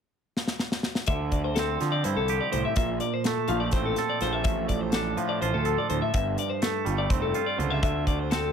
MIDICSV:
0, 0, Header, 1, 5, 480
1, 0, Start_track
1, 0, Tempo, 481541
1, 1078, Time_signature, 7, 3, 24, 8
1, 8497, End_track
2, 0, Start_track
2, 0, Title_t, "Clean electric guitar"
2, 0, Program_c, 0, 27
2, 1072, Note_on_c, 0, 76, 82
2, 1312, Note_off_c, 0, 76, 0
2, 1312, Note_on_c, 0, 74, 61
2, 1435, Note_off_c, 0, 74, 0
2, 1439, Note_on_c, 0, 72, 62
2, 1550, Note_on_c, 0, 69, 75
2, 1558, Note_off_c, 0, 72, 0
2, 1798, Note_off_c, 0, 69, 0
2, 1798, Note_on_c, 0, 65, 72
2, 1913, Note_on_c, 0, 74, 66
2, 1918, Note_off_c, 0, 65, 0
2, 2034, Note_off_c, 0, 74, 0
2, 2034, Note_on_c, 0, 72, 76
2, 2155, Note_off_c, 0, 72, 0
2, 2159, Note_on_c, 0, 69, 68
2, 2398, Note_off_c, 0, 69, 0
2, 2398, Note_on_c, 0, 74, 66
2, 2509, Note_off_c, 0, 74, 0
2, 2513, Note_on_c, 0, 72, 70
2, 2635, Note_off_c, 0, 72, 0
2, 2642, Note_on_c, 0, 76, 70
2, 2747, Note_off_c, 0, 76, 0
2, 2759, Note_on_c, 0, 76, 86
2, 2991, Note_off_c, 0, 76, 0
2, 2995, Note_on_c, 0, 74, 68
2, 3116, Note_off_c, 0, 74, 0
2, 3126, Note_on_c, 0, 72, 65
2, 3232, Note_off_c, 0, 72, 0
2, 3232, Note_on_c, 0, 69, 75
2, 3473, Note_on_c, 0, 65, 79
2, 3474, Note_off_c, 0, 69, 0
2, 3589, Note_on_c, 0, 74, 68
2, 3594, Note_off_c, 0, 65, 0
2, 3710, Note_off_c, 0, 74, 0
2, 3714, Note_on_c, 0, 72, 73
2, 3835, Note_off_c, 0, 72, 0
2, 3843, Note_on_c, 0, 69, 71
2, 4079, Note_off_c, 0, 69, 0
2, 4082, Note_on_c, 0, 74, 63
2, 4199, Note_off_c, 0, 74, 0
2, 4204, Note_on_c, 0, 72, 69
2, 4313, Note_off_c, 0, 72, 0
2, 4313, Note_on_c, 0, 76, 67
2, 4414, Note_off_c, 0, 76, 0
2, 4426, Note_on_c, 0, 76, 84
2, 4664, Note_off_c, 0, 76, 0
2, 4668, Note_on_c, 0, 74, 63
2, 4794, Note_off_c, 0, 74, 0
2, 4794, Note_on_c, 0, 72, 65
2, 4912, Note_on_c, 0, 69, 72
2, 4915, Note_off_c, 0, 72, 0
2, 5155, Note_off_c, 0, 69, 0
2, 5155, Note_on_c, 0, 65, 77
2, 5272, Note_on_c, 0, 74, 68
2, 5275, Note_off_c, 0, 65, 0
2, 5394, Note_off_c, 0, 74, 0
2, 5398, Note_on_c, 0, 72, 78
2, 5517, Note_off_c, 0, 72, 0
2, 5521, Note_on_c, 0, 69, 71
2, 5758, Note_off_c, 0, 69, 0
2, 5765, Note_on_c, 0, 74, 68
2, 5873, Note_off_c, 0, 74, 0
2, 5877, Note_on_c, 0, 72, 63
2, 5996, Note_off_c, 0, 72, 0
2, 6000, Note_on_c, 0, 76, 64
2, 6110, Note_off_c, 0, 76, 0
2, 6122, Note_on_c, 0, 76, 84
2, 6359, Note_off_c, 0, 76, 0
2, 6369, Note_on_c, 0, 74, 67
2, 6476, Note_on_c, 0, 72, 67
2, 6482, Note_off_c, 0, 74, 0
2, 6602, Note_off_c, 0, 72, 0
2, 6602, Note_on_c, 0, 69, 75
2, 6842, Note_off_c, 0, 69, 0
2, 6842, Note_on_c, 0, 65, 71
2, 6959, Note_off_c, 0, 65, 0
2, 6961, Note_on_c, 0, 74, 68
2, 7085, Note_off_c, 0, 74, 0
2, 7085, Note_on_c, 0, 72, 76
2, 7196, Note_on_c, 0, 69, 68
2, 7201, Note_off_c, 0, 72, 0
2, 7436, Note_off_c, 0, 69, 0
2, 7440, Note_on_c, 0, 74, 67
2, 7563, Note_off_c, 0, 74, 0
2, 7563, Note_on_c, 0, 72, 60
2, 7681, Note_off_c, 0, 72, 0
2, 7681, Note_on_c, 0, 76, 70
2, 7792, Note_off_c, 0, 76, 0
2, 7804, Note_on_c, 0, 76, 84
2, 8041, Note_off_c, 0, 76, 0
2, 8046, Note_on_c, 0, 74, 63
2, 8167, Note_off_c, 0, 74, 0
2, 8167, Note_on_c, 0, 72, 59
2, 8282, Note_off_c, 0, 72, 0
2, 8284, Note_on_c, 0, 69, 70
2, 8497, Note_off_c, 0, 69, 0
2, 8497, End_track
3, 0, Start_track
3, 0, Title_t, "Clean electric guitar"
3, 0, Program_c, 1, 27
3, 1089, Note_on_c, 1, 50, 63
3, 1586, Note_on_c, 1, 60, 60
3, 1806, Note_on_c, 1, 53, 56
3, 2046, Note_on_c, 1, 64, 55
3, 2288, Note_on_c, 1, 67, 54
3, 2514, Note_on_c, 1, 45, 58
3, 2726, Note_off_c, 1, 45, 0
3, 2732, Note_off_c, 1, 64, 0
3, 2733, Note_off_c, 1, 50, 0
3, 2733, Note_off_c, 1, 67, 0
3, 2754, Note_on_c, 1, 46, 75
3, 2784, Note_off_c, 1, 60, 0
3, 3257, Note_on_c, 1, 57, 61
3, 3474, Note_off_c, 1, 53, 0
3, 3478, Note_on_c, 1, 53, 56
3, 3736, Note_on_c, 1, 60, 56
3, 3972, Note_on_c, 1, 69, 59
3, 4208, Note_off_c, 1, 53, 0
3, 4208, Note_on_c, 1, 53, 62
3, 4405, Note_off_c, 1, 46, 0
3, 4442, Note_on_c, 1, 45, 74
3, 4929, Note_off_c, 1, 57, 0
3, 4933, Note_on_c, 1, 62, 58
3, 5157, Note_off_c, 1, 53, 0
3, 5157, Note_on_c, 1, 53, 58
3, 5402, Note_off_c, 1, 60, 0
3, 5406, Note_on_c, 1, 65, 59
3, 5634, Note_off_c, 1, 69, 0
3, 5638, Note_on_c, 1, 69, 53
3, 5874, Note_off_c, 1, 45, 0
3, 5886, Note_on_c, 1, 45, 60
3, 6092, Note_off_c, 1, 45, 0
3, 6120, Note_on_c, 1, 43, 68
3, 6150, Note_off_c, 1, 65, 0
3, 6150, Note_off_c, 1, 69, 0
3, 6597, Note_off_c, 1, 62, 0
3, 6601, Note_on_c, 1, 57, 55
3, 6823, Note_off_c, 1, 53, 0
3, 6827, Note_on_c, 1, 55, 57
3, 7080, Note_on_c, 1, 60, 52
3, 7327, Note_on_c, 1, 65, 50
3, 7557, Note_on_c, 1, 50, 60
3, 7764, Note_off_c, 1, 55, 0
3, 7768, Note_off_c, 1, 50, 0
3, 7770, Note_off_c, 1, 43, 0
3, 7806, Note_on_c, 1, 50, 69
3, 8292, Note_off_c, 1, 57, 0
3, 8296, Note_off_c, 1, 60, 0
3, 8296, Note_on_c, 1, 60, 56
3, 8497, Note_off_c, 1, 50, 0
3, 8497, Note_off_c, 1, 60, 0
3, 8497, Note_off_c, 1, 65, 0
3, 8497, End_track
4, 0, Start_track
4, 0, Title_t, "Picked electric bass"
4, 0, Program_c, 2, 34
4, 1077, Note_on_c, 2, 38, 97
4, 1757, Note_off_c, 2, 38, 0
4, 1808, Note_on_c, 2, 50, 77
4, 2022, Note_off_c, 2, 50, 0
4, 2045, Note_on_c, 2, 43, 79
4, 2151, Note_off_c, 2, 43, 0
4, 2155, Note_on_c, 2, 36, 79
4, 2375, Note_off_c, 2, 36, 0
4, 2525, Note_on_c, 2, 36, 77
4, 2631, Note_off_c, 2, 36, 0
4, 2761, Note_on_c, 2, 34, 84
4, 2978, Note_off_c, 2, 34, 0
4, 3479, Note_on_c, 2, 34, 94
4, 3696, Note_off_c, 2, 34, 0
4, 3717, Note_on_c, 2, 33, 89
4, 3935, Note_off_c, 2, 33, 0
4, 4201, Note_on_c, 2, 34, 90
4, 4439, Note_off_c, 2, 34, 0
4, 4439, Note_on_c, 2, 33, 88
4, 5117, Note_off_c, 2, 33, 0
4, 5158, Note_on_c, 2, 45, 88
4, 5376, Note_off_c, 2, 45, 0
4, 5400, Note_on_c, 2, 33, 79
4, 5507, Note_off_c, 2, 33, 0
4, 5524, Note_on_c, 2, 38, 81
4, 5739, Note_off_c, 2, 38, 0
4, 5886, Note_on_c, 2, 38, 77
4, 5991, Note_off_c, 2, 38, 0
4, 6124, Note_on_c, 2, 31, 79
4, 6339, Note_off_c, 2, 31, 0
4, 6846, Note_on_c, 2, 31, 93
4, 7060, Note_off_c, 2, 31, 0
4, 7079, Note_on_c, 2, 29, 80
4, 7297, Note_off_c, 2, 29, 0
4, 7564, Note_on_c, 2, 37, 82
4, 7808, Note_off_c, 2, 37, 0
4, 7808, Note_on_c, 2, 38, 89
4, 8484, Note_off_c, 2, 38, 0
4, 8497, End_track
5, 0, Start_track
5, 0, Title_t, "Drums"
5, 365, Note_on_c, 9, 38, 61
5, 465, Note_off_c, 9, 38, 0
5, 474, Note_on_c, 9, 38, 69
5, 573, Note_off_c, 9, 38, 0
5, 592, Note_on_c, 9, 38, 74
5, 692, Note_off_c, 9, 38, 0
5, 716, Note_on_c, 9, 38, 77
5, 816, Note_off_c, 9, 38, 0
5, 829, Note_on_c, 9, 38, 81
5, 929, Note_off_c, 9, 38, 0
5, 950, Note_on_c, 9, 38, 86
5, 1050, Note_off_c, 9, 38, 0
5, 1061, Note_on_c, 9, 42, 82
5, 1074, Note_on_c, 9, 36, 103
5, 1161, Note_off_c, 9, 42, 0
5, 1174, Note_off_c, 9, 36, 0
5, 1313, Note_on_c, 9, 42, 55
5, 1316, Note_on_c, 9, 36, 57
5, 1412, Note_off_c, 9, 42, 0
5, 1415, Note_off_c, 9, 36, 0
5, 1553, Note_on_c, 9, 42, 78
5, 1561, Note_on_c, 9, 38, 96
5, 1653, Note_off_c, 9, 42, 0
5, 1661, Note_off_c, 9, 38, 0
5, 1800, Note_on_c, 9, 42, 57
5, 1808, Note_on_c, 9, 38, 28
5, 1899, Note_off_c, 9, 42, 0
5, 1907, Note_off_c, 9, 38, 0
5, 2034, Note_on_c, 9, 42, 78
5, 2133, Note_off_c, 9, 42, 0
5, 2275, Note_on_c, 9, 42, 58
5, 2374, Note_off_c, 9, 42, 0
5, 2518, Note_on_c, 9, 42, 57
5, 2618, Note_off_c, 9, 42, 0
5, 2748, Note_on_c, 9, 42, 81
5, 2757, Note_on_c, 9, 36, 98
5, 2848, Note_off_c, 9, 42, 0
5, 2857, Note_off_c, 9, 36, 0
5, 2991, Note_on_c, 9, 42, 55
5, 3091, Note_off_c, 9, 42, 0
5, 3233, Note_on_c, 9, 42, 75
5, 3241, Note_on_c, 9, 38, 88
5, 3332, Note_off_c, 9, 42, 0
5, 3340, Note_off_c, 9, 38, 0
5, 3466, Note_on_c, 9, 42, 50
5, 3566, Note_off_c, 9, 42, 0
5, 3703, Note_on_c, 9, 42, 75
5, 3710, Note_on_c, 9, 38, 30
5, 3715, Note_on_c, 9, 36, 91
5, 3802, Note_off_c, 9, 42, 0
5, 3810, Note_off_c, 9, 38, 0
5, 3814, Note_off_c, 9, 36, 0
5, 3950, Note_on_c, 9, 42, 58
5, 3958, Note_on_c, 9, 38, 33
5, 4049, Note_off_c, 9, 42, 0
5, 4057, Note_off_c, 9, 38, 0
5, 4193, Note_on_c, 9, 42, 54
5, 4201, Note_on_c, 9, 38, 29
5, 4292, Note_off_c, 9, 42, 0
5, 4300, Note_off_c, 9, 38, 0
5, 4428, Note_on_c, 9, 42, 78
5, 4434, Note_on_c, 9, 36, 106
5, 4528, Note_off_c, 9, 42, 0
5, 4534, Note_off_c, 9, 36, 0
5, 4673, Note_on_c, 9, 42, 56
5, 4677, Note_on_c, 9, 36, 57
5, 4773, Note_off_c, 9, 42, 0
5, 4777, Note_off_c, 9, 36, 0
5, 4904, Note_on_c, 9, 42, 69
5, 4912, Note_on_c, 9, 38, 100
5, 5004, Note_off_c, 9, 42, 0
5, 5012, Note_off_c, 9, 38, 0
5, 5158, Note_on_c, 9, 42, 51
5, 5258, Note_off_c, 9, 42, 0
5, 5402, Note_on_c, 9, 42, 66
5, 5502, Note_off_c, 9, 42, 0
5, 5633, Note_on_c, 9, 42, 57
5, 5733, Note_off_c, 9, 42, 0
5, 5878, Note_on_c, 9, 42, 55
5, 5978, Note_off_c, 9, 42, 0
5, 6118, Note_on_c, 9, 42, 86
5, 6122, Note_on_c, 9, 36, 98
5, 6218, Note_off_c, 9, 42, 0
5, 6222, Note_off_c, 9, 36, 0
5, 6358, Note_on_c, 9, 42, 54
5, 6457, Note_off_c, 9, 42, 0
5, 6598, Note_on_c, 9, 42, 79
5, 6606, Note_on_c, 9, 38, 97
5, 6697, Note_off_c, 9, 42, 0
5, 6705, Note_off_c, 9, 38, 0
5, 6841, Note_on_c, 9, 42, 52
5, 6941, Note_off_c, 9, 42, 0
5, 7080, Note_on_c, 9, 36, 98
5, 7081, Note_on_c, 9, 42, 74
5, 7179, Note_off_c, 9, 36, 0
5, 7181, Note_off_c, 9, 42, 0
5, 7320, Note_on_c, 9, 42, 56
5, 7420, Note_off_c, 9, 42, 0
5, 7573, Note_on_c, 9, 42, 55
5, 7673, Note_off_c, 9, 42, 0
5, 7804, Note_on_c, 9, 36, 106
5, 7808, Note_on_c, 9, 42, 76
5, 7904, Note_off_c, 9, 36, 0
5, 7907, Note_off_c, 9, 42, 0
5, 8043, Note_on_c, 9, 42, 51
5, 8044, Note_on_c, 9, 36, 65
5, 8143, Note_off_c, 9, 36, 0
5, 8143, Note_off_c, 9, 42, 0
5, 8285, Note_on_c, 9, 42, 68
5, 8293, Note_on_c, 9, 38, 104
5, 8385, Note_off_c, 9, 42, 0
5, 8393, Note_off_c, 9, 38, 0
5, 8497, End_track
0, 0, End_of_file